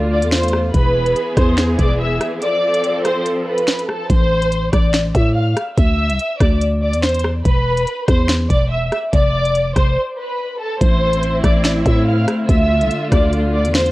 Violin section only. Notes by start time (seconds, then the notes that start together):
0.11 D5 D6
0.32 C5 C6
0.74 B4 B5
1.37 C5 C6
1.79 D5 D6
2.00 E5 E6
2.42 D5 D6
3.05 C5 C6
3.47 B4 B5
3.89 A4 A5
4.10 C5 C6
4.73 D5 D6
5.15 E5 E6
5.36 F5 F6
5.78 E5 E6
6.41 D5 D6
6.82 D5 D6
7.04 C5 C6
7.45 B4 B5
8.08 C5 C6
8.50 D5 D6
8.71 E5 E6
9.13 D5 D6
9.76 C5 C6
10.18 B4 B5
10.60 A4 A5
10.81 C5 C6
11.44 D5 D6
11.86 E5 E6
12.07 F5 F6
12.49 E5 E6
13.12 D5 D6
13.54 D5 D6
13.75 C5 C6